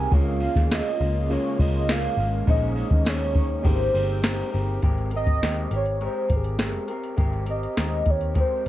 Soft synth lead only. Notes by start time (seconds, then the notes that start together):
Already playing: G#5
0.13 F5
0.74 D#5
1.31 C#5
1.60 D#5
1.91 F5
2.49 D#5
3.09 C#5
3.68 C5
5.16 D#5
5.76 C#5
6.05 C5
6.36 G#4
7.50 D#5
8.10 C#5
8.39 C5